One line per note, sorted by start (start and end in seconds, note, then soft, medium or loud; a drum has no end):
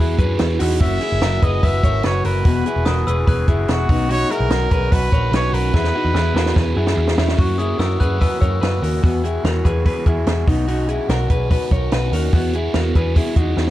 0.00 0.15 E2 loud
0.00 0.18 B3 medium
0.00 0.19 E4 medium
0.00 0.16 F#4 medium
0.00 0.18 G#4 medium
0.00 0.18 B4 loud
0.18 0.36 F#2 medium
0.18 0.37 E4 soft
0.18 0.39 F#4 medium
0.18 0.38 G#4 medium
0.18 0.57 B4 medium
0.18 kick medium
0.18 hi-hat pedal medium
0.18 open hi-hat medium
0.38 0.57 E2 medium
0.38 0.59 E3 medium
0.38 0.59 B3 medium
0.38 0.59 E4 loud
0.38 0.57 F#4 loud
0.38 0.59 G#4 loud
0.38 snare loud
0.38 hi-hat pedal medium
0.38 open hi-hat loud
0.58 0.78 E2 loud
0.58 0.81 D#4 medium
0.58 0.80 E4 medium
0.58 0.80 F#4 medium
0.58 0.80 G#4 medium
0.58 hi-hat pedal medium
0.58 open hi-hat medium
0.79 0.97 F#1 loud
0.79 1.00 F#2 medium
0.79 1.01 F#3 medium
0.79 1.01 A#3 medium
0.79 1.01 C#4 medium
0.79 1.01 E4 medium
0.79 1.00 F#4 medium
0.79 1.45 E5 loud
0.79 kick loud
0.79 hi-hat pedal medium
0.79 open hi-hat medium
1.01 1.21 A#3 soft
1.01 1.22 C#4 medium
1.01 1.22 E4 medium
1.01 1.22 F#4 medium
1.01 1.22 G#4 medium
1.01 hi-hat pedal medium
1.01 open hi-hat medium
1.12 1.20 F#1 loud
1.22 1.39 F#1 loud
1.22 1.42 F#2 medium
1.22 1.42 F#3 medium
1.22 1.42 A#3 medium
1.22 1.42 C#4 medium
1.22 1.42 E4 medium
1.22 1.41 F#4 medium
1.22 1.42 A#4 medium
1.22 snare loud
1.22 hi-hat pedal medium
1.22 open hi-hat medium
1.42 1.59 F#1 loud
1.42 1.62 A#3 soft
1.42 1.63 C#4 soft
1.42 1.63 E4 medium
1.42 1.63 F#4 medium
1.42 1.63 G#4 medium
1.42 1.62 B4 medium
1.42 1.66 D#5 loud
1.42 kick medium
1.42 hi-hat pedal medium
1.42 open hi-hat medium
1.63 1.80 F#1 loud
1.63 1.83 A#3 medium
1.63 1.84 C#4 medium
1.63 1.84 E4 medium
1.63 1.83 F#4 medium
1.63 1.83 B4 medium
1.63 2.07 E5 loud
1.63 kick medium
1.63 hi-hat pedal medium
1.63 open hi-hat medium
1.83 2.00 G#1 medium
1.83 2.05 A#3 soft
1.83 2.05 C#4 medium
1.83 2.05 E4 medium
1.83 2.05 F#4 medium
1.83 2.05 A#4 medium
1.83 2.04 C#5 medium
1.83 kick medium
1.83 hi-hat pedal medium
1.83 open hi-hat medium
2.03 2.21 F#1 medium
2.03 2.25 F#2 medium
2.03 2.25 F#3 medium
2.03 2.25 A#3 medium
2.03 2.25 C#4 medium
2.03 2.26 E4 medium
2.03 2.24 F#4 medium
2.03 2.25 B4 medium
2.03 2.27 C#5 medium
2.03 snare loud
2.03 hi-hat pedal medium
2.03 open hi-hat medium
2.24 2.42 F#1 loud
2.24 2.46 C#4 soft
2.24 2.46 E4 medium
2.24 2.45 F#4 medium
2.24 2.45 A#4 medium
2.24 3.28 B4 medium
2.24 hi-hat pedal medium
2.24 open hi-hat medium
2.28 2.46 A#3 soft
2.45 2.62 E1 loud
2.45 2.66 E3 medium
2.45 2.66 B3 medium
2.45 2.67 E4 medium
2.45 2.65 F#4 loud
2.45 2.67 G#4 loud
2.45 kick loud
2.45 hi-hat pedal medium
2.45 open hi-hat medium
2.66 2.86 E4 soft
2.66 2.86 F#4 medium
2.66 2.87 G#4 medium
2.66 hi-hat pedal medium
2.66 open hi-hat medium
2.76 2.84 E1 medium
2.85 3.04 E1 loud
2.85 3.07 E3 medium
2.85 3.07 B3 medium
2.85 3.07 E4 medium
2.85 3.05 F#4 medium
2.85 3.07 G#4 medium
2.85 3.07 A#4 medium
2.85 3.07 D#6 medium
2.85 snare loud
2.85 hi-hat pedal medium
2.85 open hi-hat medium
3.06 3.24 E1 loud
3.06 3.27 E4 medium
3.06 3.27 F#4 medium
3.06 3.28 G#4 medium
3.06 3.26 B4 medium
3.06 3.28 E6 loud
3.06 hi-hat pedal medium
3.06 open hi-hat medium
3.27 3.44 E1 loud
3.27 3.48 B3 medium
3.27 3.48 E4 medium
3.27 3.46 F#4 medium
3.27 3.48 G#4 medium
3.27 3.48 B4 medium
3.27 3.57 F#6 loud
3.27 kick loud
3.27 hi-hat pedal medium
3.27 open hi-hat medium
3.48 3.65 F#1 loud
3.48 3.68 E4 soft
3.48 3.68 F#4 medium
3.48 3.68 G#4 medium
3.48 kick medium
3.48 hi-hat pedal medium
3.48 open hi-hat medium
3.68 3.86 E1 loud
3.68 3.89 E3 medium
3.68 3.89 B3 medium
3.68 3.89 E4 medium
3.68 3.87 F#4 medium
3.68 4.13 F#4 loud
3.68 3.89 G#4 medium
3.68 snare loud
3.68 hi-hat pedal medium
3.68 open hi-hat medium
3.88 4.23 B1 medium
3.88 4.09 B3 medium
3.88 4.09 C#4 medium
3.88 4.08 D#4 soft
3.88 4.09 F#4 medium
3.88 kick loud
3.88 hi-hat pedal medium
3.88 open hi-hat medium
4.09 4.30 B2 medium
4.09 4.30 B3 medium
4.09 4.29 C#4 loud
4.09 4.30 D#4 medium
4.09 4.28 F#4 loud
4.09 4.33 C#5 loud
4.09 hi-hat pedal medium
4.09 open hi-hat medium
4.29 4.50 C#4 medium
4.29 4.49 D#4 soft
4.29 4.50 E4 medium
4.29 4.50 F#4 medium
4.29 4.51 G#4 medium
4.29 4.94 A#4 loud
4.29 hi-hat pedal medium
4.29 open hi-hat medium
4.40 4.49 B1 loud
4.49 4.67 B1 loud
4.49 4.70 B2 medium
4.49 4.71 B3 medium
4.49 4.70 C#4 medium
4.49 4.71 D#4 medium
4.49 4.69 F#4 medium
4.49 4.71 A#4 loud
4.49 snare loud
4.49 hi-hat pedal medium
4.49 open hi-hat loud
4.70 4.88 B1 loud
4.70 4.90 C#4 medium
4.70 4.89 D#4 soft
4.70 4.91 F#4 medium
4.70 4.92 G#4 medium
4.70 4.91 B4 medium
4.70 kick medium
4.70 hi-hat pedal medium
4.70 open hi-hat medium
4.90 5.09 B1 loud
4.90 5.11 B3 medium
4.90 5.11 C#4 medium
4.90 5.12 D#4 medium
4.90 5.10 F#4 medium
4.90 5.12 B4 medium
4.90 5.33 B4 loud
4.90 kick loud
4.90 hi-hat pedal medium
4.90 open hi-hat medium
5.11 5.29 A#1 medium
5.11 5.32 C#4 medium
5.11 5.31 D#4 soft
5.11 5.32 F#4 medium
5.11 5.34 A#4 medium
5.11 5.33 C#5 medium
5.11 kick loud
5.11 hi-hat pedal medium
5.11 open hi-hat medium
5.31 5.49 B1 loud
5.31 5.53 B2 medium
5.31 5.53 B3 medium
5.31 5.52 C#4 medium
5.31 5.53 D#4 medium
5.31 5.50 F#4 medium
5.31 5.54 B4 medium
5.31 5.55 C#5 loud
5.31 snare loud
5.31 hi-hat pedal medium
5.31 open hi-hat loud
5.52 5.70 B1 loud
5.52 5.73 C#4 medium
5.52 5.73 D#4 soft
5.52 5.73 F#4 medium
5.52 5.74 A#4 medium
5.52 6.98 B4 loud
5.52 hi-hat pedal medium
5.52 open hi-hat medium
5.72 5.91 E2 loud
5.72 5.94 E3 medium
5.72 5.94 B3 medium
5.72 5.94 E4 medium
5.72 5.92 F#4 medium
5.72 5.93 G#4 medium
5.72 kick loud
5.72 snare medium
5.84 snare medium
5.93 6.16 D#4 medium
5.93 6.14 E4 soft
5.93 6.14 F#4 medium
5.93 6.14 G#4 medium
6.05 6.13 E2 medium
6.14 6.31 E2 loud
6.14 6.35 E3 medium
6.14 6.36 B3 medium
6.14 6.36 E4 medium
6.14 6.33 F#4 medium
6.14 6.35 G#4 medium
6.14 snare medium
6.34 6.52 E2 loud
6.34 6.54 E4 medium
6.34 6.55 F#4 medium
6.34 6.55 G#4 medium
6.34 6.56 A#4 medium
6.34 snare medium
6.46 snare medium
6.54 6.73 E2 loud
6.54 6.76 B3 medium
6.54 6.76 E4 medium
6.54 6.73 F#4 medium
6.54 6.74 G#4 medium
6.54 6.77 B4 medium
6.54 kick loud
6.54 snare medium
6.74 6.94 F#2 loud
6.74 6.94 E4 medium
6.74 6.96 F#4 medium
6.74 6.95 G#4 medium
6.87 snare medium
6.95 7.14 E2 loud
6.95 7.17 E3 medium
6.95 7.17 B3 medium
6.95 7.17 E4 medium
6.95 7.15 F#4 medium
6.95 7.16 G#4 medium
7.08 snare medium
7.16 7.35 E2 medium
7.16 7.38 C#4 medium
7.16 7.37 E4 soft
7.16 7.37 F#4 medium
7.16 7.38 G#4 medium
7.16 snare loud
7.28 snare loud
7.36 7.58 F#2 medium
7.36 7.72 F#2 loud
7.36 7.58 F#3 loud
7.36 7.59 A#3 medium
7.36 7.57 C#4 medium
7.36 7.58 E4 medium
7.36 7.57 F#4 loud
7.36 7.60 C#6 medium
7.36 kick loud
7.36 open hi-hat medium
7.58 7.77 A#3 medium
7.58 7.79 C#4 medium
7.58 7.78 E4 medium
7.58 7.79 F#4 medium
7.58 7.80 G#4 medium
7.58 7.80 D#6 medium
7.58 hi-hat pedal medium
7.58 open hi-hat medium
7.78 7.96 F#2 loud
7.78 8.00 A#3 medium
7.78 8.00 C#4 medium
7.78 8.00 E4 medium
7.78 7.99 F#4 medium
7.78 8.00 A#4 medium
7.78 8.01 E6 medium
7.78 snare loud
7.78 hi-hat pedal medium
7.78 open hi-hat medium
8.00 8.26 F#2 loud
8.00 8.19 A#3 medium
8.00 8.20 C#4 medium
8.00 8.19 E4 medium
8.00 8.20 F#4 medium
8.00 8.21 G#4 medium
8.00 8.20 B4 medium
8.00 8.21 F#6 loud
8.00 kick medium
8.00 hi-hat pedal medium
8.00 open hi-hat medium
8.19 8.41 F#2 medium
8.19 8.41 F#3 medium
8.19 8.41 A#3 loud
8.19 8.39 C#4 loud
8.19 8.40 E4 medium
8.19 8.39 F#4 medium
8.19 8.41 B4 medium
8.19 8.39 E6 loud
8.19 kick medium
8.19 hi-hat pedal medium
8.19 open hi-hat medium
8.40 8.59 F#2 loud
8.40 8.60 A#3 soft
8.40 8.62 C#4 medium
8.40 8.61 E4 medium
8.40 8.61 F#4 medium
8.40 8.62 A#4 medium
8.40 8.61 C#5 medium
8.40 9.19 E6 medium
8.40 kick medium
8.40 hi-hat pedal medium
8.40 open hi-hat medium
8.61 8.79 F#2 medium
8.61 8.82 A#3 medium
8.61 8.81 C#4 medium
8.61 8.82 E4 medium
8.61 8.80 F#4 medium
8.61 8.82 B4 medium
8.61 snare loud
8.61 hi-hat pedal medium
8.61 open hi-hat medium
8.81 8.99 D#2 medium
8.81 9.02 A#3 soft
8.81 9.03 C#4 medium
8.81 9.02 E4 medium
8.81 9.03 F#4 medium
8.81 9.03 A#4 medium
8.81 hi-hat pedal medium
8.81 open hi-hat medium
9.02 9.37 E2 loud
9.02 9.24 E3 medium
9.02 9.24 B3 loud
9.02 9.24 E4 medium
9.02 9.22 F#4 loud
9.02 9.23 G#4 loud
9.02 kick loud
9.02 hi-hat pedal medium
9.02 open hi-hat medium
9.23 9.43 E4 soft
9.23 9.44 F#4 medium
9.23 9.44 G#4 medium
9.23 hi-hat pedal medium
9.23 open hi-hat medium
9.44 9.61 E2 loud
9.44 9.65 B3 medium
9.44 9.65 E4 medium
9.44 9.63 F#4 medium
9.44 9.64 G#4 medium
9.44 9.65 A#4 medium
9.44 snare loud
9.44 hi-hat pedal medium
9.44 open hi-hat medium
9.64 9.90 E2 loud
9.64 9.85 E4 soft
9.64 9.85 F#4 medium
9.64 9.86 G#4 medium
9.64 9.85 B4 medium
9.64 kick medium
9.64 hi-hat pedal medium
9.64 open hi-hat medium
9.85 10.06 E3 loud
9.85 10.07 B3 medium
9.85 10.07 E4 loud
9.85 10.05 F#4 loud
9.85 10.07 G#4 medium
9.85 10.06 B4 medium
9.85 kick medium
9.85 hi-hat pedal medium
9.85 open hi-hat medium
10.06 10.23 E2 loud
10.06 10.27 E4 medium
10.06 10.27 F#4 medium
10.06 10.28 G#4 medium
10.06 kick medium
10.06 hi-hat pedal medium
10.06 open hi-hat medium
10.27 10.44 E2 loud
10.27 10.48 B3 medium
10.27 10.48 E4 medium
10.27 10.46 F#4 medium
10.27 10.48 G#4 medium
10.27 snare loud
10.27 hi-hat pedal medium
10.27 open hi-hat medium
10.47 10.98 B1 loud
10.47 10.67 B3 medium
10.47 10.68 C#4 soft
10.47 10.68 D#4 soft
10.47 10.68 F#4 medium
10.47 kick loud
10.47 hi-hat pedal medium
10.47 open hi-hat medium
10.68 10.89 B2 medium
10.68 10.89 B3 medium
10.68 10.88 C#4 loud
10.68 10.89 D#4 loud
10.68 10.87 F#4 loud
10.68 hi-hat pedal medium
10.68 open hi-hat medium
10.88 11.09 C#4 medium
10.88 11.09 D#4 medium
10.88 11.09 E4 medium
10.88 11.09 F#4 medium
10.88 11.09 G#4 medium
10.88 hi-hat pedal medium
10.88 open hi-hat medium
11.09 11.26 B1 loud
11.09 11.30 B3 medium
11.09 11.29 C#4 medium
11.09 11.30 D#4 medium
11.09 11.27 F#4 medium
11.09 11.30 A#4 medium
11.09 snare loud
11.09 hi-hat pedal medium
11.09 open hi-hat medium
11.28 11.56 B1 loud
11.28 11.50 C#4 medium
11.28 11.50 D#4 soft
11.28 11.50 F#4 medium
11.28 11.51 G#4 medium
11.28 11.50 B4 medium
11.28 kick medium
11.28 hi-hat pedal medium
11.28 open hi-hat medium
11.49 11.71 B2 medium
11.49 11.71 B3 medium
11.49 11.71 C#4 loud
11.49 11.71 D#4 loud
11.49 11.70 F#4 loud
11.49 11.71 B4 medium
11.49 kick medium
11.49 hi-hat pedal medium
11.49 open hi-hat medium
11.71 11.88 B1 loud
11.71 11.92 C#4 medium
11.71 11.91 D#4 medium
11.71 11.92 F#4 medium
11.71 11.93 A#4 medium
11.71 11.92 C#5 medium
11.71 kick medium
11.71 hi-hat pedal medium
11.71 open hi-hat medium
11.91 12.09 B1 loud
11.91 12.12 B3 medium
11.91 12.12 C#4 medium
11.91 12.13 D#4 medium
11.91 12.10 F#4 medium
11.91 12.13 B4 medium
11.91 snare loud
11.91 hi-hat pedal medium
11.91 open hi-hat medium
12.11 12.29 D#2 loud
12.11 12.33 C#4 medium
12.11 12.33 D#4 soft
12.11 12.33 F#4 medium
12.11 12.34 A#4 medium
12.11 hi-hat pedal medium
12.11 open hi-hat medium
12.32 12.67 E2 loud
12.32 12.54 E3 medium
12.32 12.54 B3 medium
12.32 12.54 E4 loud
12.32 12.52 F#4 loud
12.32 12.54 G#4 loud
12.32 kick loud
12.32 hi-hat pedal medium
12.32 open hi-hat medium
12.53 12.74 E4 medium
12.53 12.74 F#4 medium
12.53 12.74 G#4 medium
12.53 hi-hat pedal medium
12.53 open hi-hat medium
12.73 12.91 E2 loud
12.73 12.95 B3 medium
12.73 12.95 E4 medium
12.73 12.94 F#4 medium
12.73 12.95 G#4 medium
12.73 12.95 A#4 medium
12.73 snare loud
12.73 hi-hat pedal medium
12.73 open hi-hat medium
12.95 13.21 E2 loud
12.95 13.15 E4 medium
12.95 13.16 F#4 medium
12.95 13.16 G#4 medium
12.95 13.16 B4 medium
12.95 kick medium
12.95 hi-hat pedal medium
12.95 open hi-hat medium
13.15 13.36 E3 medium
13.15 13.36 B3 medium
13.15 13.37 E4 loud
13.15 13.35 F#4 medium
13.15 13.37 G#4 loud
13.15 kick medium
13.15 hi-hat pedal medium
13.15 open hi-hat medium
13.36 13.53 E2 medium
13.36 13.70 D#4 medium
13.36 13.57 E4 soft
13.36 13.57 F#4 medium
13.36 13.58 G#4 medium
13.36 kick medium
13.36 hi-hat pedal medium
13.36 open hi-hat medium
13.57 13.70 E2 loud
13.57 13.70 B3 medium
13.57 13.70 E4 medium
13.57 13.70 F#4 medium
13.57 13.70 G#4 medium
13.57 snare medium